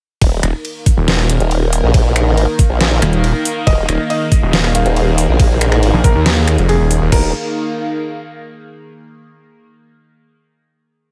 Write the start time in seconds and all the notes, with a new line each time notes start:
0.21 D#1 D#3 A#3 D#4 A#4, kick, ride
0.32 A#4
0.43 D#1, finger snap, closed hi-hat
0.62 F5, ride
0.86 kick, open hi-hat
0.97 D#1
1.08 snare, ride
1.19 finger snap
1.30 closed hi-hat
1.40 D#1, closed hi-hat
1.51 ride
1.73 open hi-hat
1.83 A#1
1.94 kick, ride
2.16 finger snap, closed hi-hat
2.28 A1
2.37 ride
2.59 kick, open hi-hat
2.70 A#1
2.81 snare, ride
2.91 snare
3.02 D#1, finger snap, closed hi-hat
3.13 closed hi-hat
3.24 ride
3.45 open hi-hat
3.67 D#1 G#4 D#5, kick, ride
3.89 D#1, finger snap, closed hi-hat
4.10 D#5, ride
4.32 kick, open hi-hat
4.42 D#1
4.53 snare, ride
4.64 finger snap
4.75 F5, closed hi-hat
4.86 D#1, closed hi-hat
4.96 ride
5.18 open hi-hat
5.29 A#1
5.40 kick, ride
5.61 finger snap, closed hi-hat
5.72 A1, finger snap
5.83 ride
5.94 A#1
6.04 A#4, kick, open hi-hat
6.15 D#2
6.26 snare, ride
6.37 snare
6.48 finger snap, closed hi-hat
6.58 F1, closed hi-hat
6.69 G#4, ride
6.80 D#1
6.91 open hi-hat
7.01 D#1
7.12 D#1 D#4 A#4, kick, crash
7.19 A#4
7.25 F5